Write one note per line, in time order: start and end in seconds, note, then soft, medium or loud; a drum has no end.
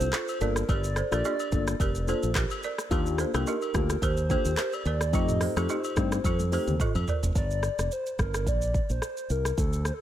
0.00 0.10 C2 medium
0.00 0.37 C5 loud
0.00 shaker medium
0.13 0.24 F4 medium
0.13 0.23 A4 medium
0.13 cross-stick loud
0.13 clap loud
0.13 shaker loud
0.28 high agogo medium
0.28 shaker medium
0.40 0.62 G1 loud
0.40 0.62 A#3 medium
0.40 0.62 D4 medium
0.40 0.63 F4 medium
0.40 0.63 A4 medium
0.40 0.70 A#4 loud
0.40 0.51 A#4 medium
0.40 0.51 D5 medium
0.40 shaker medium
0.56 cross-stick loud
0.56 shaker medium
0.69 1.01 G1 loud
0.69 0.79 G4 medium
0.69 0.79 A#4 medium
0.69 1.11 D5 loud
0.69 kick loud
0.69 high agogo medium
0.69 shaker medium
0.84 shaker medium
0.96 1.07 A4 medium
0.96 1.07 C5 medium
0.96 cross-stick loud
0.96 shaker medium
1.11 1.21 A#1 medium
1.11 1.32 A#3 medium
1.11 1.32 D4 medium
1.11 1.32 F4 medium
1.11 1.21 G4 medium
1.11 1.32 A4 medium
1.11 1.20 A#4 medium
1.11 2.19 D5 loud
1.11 cross-stick medium
1.11 high agogo medium
1.11 shaker medium
1.25 1.43 D4 medium
1.25 1.42 G4 medium
1.25 low woodblock medium
1.25 shaker medium
1.39 high agogo medium
1.39 shaker medium
1.52 1.73 G1 medium
1.52 1.74 A#3 medium
1.52 1.74 D4 medium
1.52 1.74 F4 medium
1.52 1.74 A4 medium
1.52 kick loud
1.52 shaker medium
1.67 cross-stick loud
1.67 shaker medium
1.80 2.12 F1 medium
1.80 1.91 G4 medium
1.80 1.90 A#4 medium
1.80 kick medium
1.80 high agogo medium
1.80 shaker medium
1.95 shaker medium
2.07 2.29 A#3 medium
2.07 2.29 D4 medium
2.07 2.29 F4 medium
2.07 2.29 A4 medium
2.07 2.18 A4 medium
2.07 2.18 C5 medium
2.07 high agogo medium
2.07 shaker medium
2.23 2.44 A#1 medium
2.23 shaker medium
2.35 2.46 G4 medium
2.35 2.46 A#4 medium
2.35 kick loud
2.35 cross-stick loud
2.35 clap loud
2.35 shaker medium
2.50 high agogo medium
2.50 shaker medium
2.63 2.74 A#4 medium
2.63 2.73 D5 medium
2.63 shaker medium
2.78 cross-stick medium
2.78 shaker medium
2.91 3.23 D#2 loud
2.91 3.30 A#3 medium
2.91 3.30 D4 medium
2.91 3.30 F4 medium
2.91 3.31 G4 loud
2.91 3.02 G4 medium
2.91 3.01 A#4 medium
2.91 kick loud
2.91 high agogo medium
2.91 shaker medium
3.06 shaker medium
3.18 3.29 A4 medium
3.18 3.29 C5 medium
3.18 cross-stick medium
3.18 shaker medium
3.34 3.43 C2 medium
3.34 3.54 A#3 medium
3.34 3.54 D4 medium
3.34 3.54 F4 medium
3.34 3.54 G4 medium
3.34 3.43 G4 medium
3.34 3.42 A#4 medium
3.34 cross-stick loud
3.34 high agogo medium
3.34 shaker medium
3.47 3.65 D#4 medium
3.47 3.64 G4 medium
3.47 4.04 A#4 medium
3.47 low woodblock medium
3.47 shaker medium
3.62 high agogo medium
3.62 shaker medium
3.74 3.95 D2 medium
3.74 3.96 A#3 medium
3.74 3.96 D4 medium
3.74 3.96 F4 medium
3.74 3.96 G4 medium
3.74 kick loud
3.74 cross-stick loud
3.74 shaker medium
3.90 cross-stick medium
3.90 shaker medium
4.02 4.34 D#2 loud
4.02 4.13 G4 medium
4.02 4.12 A#4 medium
4.02 4.30 C5 loud
4.02 kick medium
4.02 high agogo medium
4.02 shaker medium
4.17 shaker medium
4.29 4.51 A#3 medium
4.29 4.51 D4 medium
4.29 4.51 F4 medium
4.29 4.51 G4 medium
4.29 4.41 A4 medium
4.29 4.40 C5 medium
4.29 4.75 C5 loud
4.29 kick loud
4.29 high agogo medium
4.29 shaker medium
4.45 4.55 D#2 medium
4.45 shaker medium
4.57 4.68 G4 medium
4.57 4.68 A#4 medium
4.57 cross-stick loud
4.57 clap loud
4.57 shaker loud
4.73 5.16 D5 loud
4.73 high agogo medium
4.73 shaker medium
4.85 5.13 D#2 loud
4.85 4.96 A#4 medium
4.85 4.96 D5 medium
4.85 shaker medium
5.01 cross-stick loud
5.01 shaker loud
5.13 5.45 F2 loud
5.13 5.52 A3 medium
5.13 5.52 C4 medium
5.13 5.53 D#4 medium
5.13 5.24 F4 medium
5.13 5.53 G4 loud
5.13 5.23 A4 medium
5.13 5.59 D#5 loud
5.13 kick loud
5.13 high agogo medium
5.13 shaker medium
5.29 mid tom medium
5.29 shaker medium
5.41 5.52 A4 medium
5.41 5.51 C5 medium
5.41 cross-stick medium
5.41 open hi-hat medium
5.41 shaker medium
5.56 5.66 F2 medium
5.56 5.76 A3 medium
5.56 5.76 C4 medium
5.56 5.76 D#4 medium
5.56 5.65 F4 medium
5.56 5.76 G4 medium
5.56 5.65 A4 medium
5.56 6.68 C5 loud
5.56 cross-stick medium
5.56 high agogo medium
5.56 shaker medium
5.69 5.87 D#4 medium
5.69 5.86 G4 medium
5.69 low woodblock medium
5.69 shaker medium
5.84 high agogo medium
5.84 shaker medium
5.96 6.17 G2 loud
5.96 6.18 A3 medium
5.96 6.18 C4 medium
5.96 6.18 D#4 medium
5.96 6.18 G4 medium
5.96 kick medium
5.96 cross-stick loud
5.96 shaker medium
6.12 cross-stick loud
6.12 shaker medium
6.24 6.56 F2 loud
6.24 6.35 F4 medium
6.24 6.34 A4 medium
6.24 kick medium
6.24 high tom medium
6.24 high agogo medium
6.24 shaker medium
6.39 high tom medium
6.39 shaker medium
6.52 6.73 A3 medium
6.52 6.74 C4 medium
6.52 6.74 D#4 medium
6.52 6.74 G4 medium
6.52 6.63 A4 medium
6.52 6.62 C5 medium
6.52 open hi-hat medium
6.52 high agogo medium
6.52 shaker medium
6.67 6.77 D#2 medium
6.67 mid tom medium
6.67 shaker medium
6.80 6.91 F4 medium
6.80 6.90 A4 medium
6.80 kick loud
6.80 mid tom medium
6.80 low woodblock medium
6.80 shaker medium
6.95 7.04 F2 loud
6.95 high agogo medium
6.95 shaker medium
7.08 7.18 A#4 medium
7.08 7.18 D5 medium
7.08 floor tom loud
7.08 shaker medium
7.23 7.32 F1 medium
7.23 floor tom loud
7.23 shaker medium
7.35 7.67 G1 loud
7.35 7.94 D5 loud
7.35 kick loud
7.35 shaker medium
7.51 shaker medium
7.63 cross-stick medium
7.63 shaker medium
7.78 7.88 F1 medium
7.78 cross-stick medium
7.78 shaker medium
7.91 8.20 C5 loud
7.91 shaker medium
8.06 shaker soft
8.19 8.46 G1 medium
8.19 8.49 A#4 medium
8.19 kick medium
8.19 cross-stick loud
8.19 shaker medium
8.34 cross-stick loud
8.34 shaker medium
8.46 8.78 A#1 medium
8.46 8.90 D5 loud
8.46 kick medium
8.46 shaker medium
8.62 shaker medium
8.74 kick medium
8.74 shaker medium
8.89 8.99 A#1 medium
8.89 9.33 C5 loud
8.89 shaker medium
9.02 cross-stick medium
9.02 shaker medium
9.17 shaker medium
9.30 9.51 C2 medium
9.30 9.58 A#4 medium
9.30 shaker medium
9.45 cross-stick medium
9.45 shaker medium
9.58 9.90 D2 medium
9.58 9.84 A4 loud
9.58 kick loud
9.58 shaker medium
9.73 shaker medium
9.85 9.95 C5 medium
9.85 cross-stick medium
9.85 shaker medium
9.94 10.01 A4 medium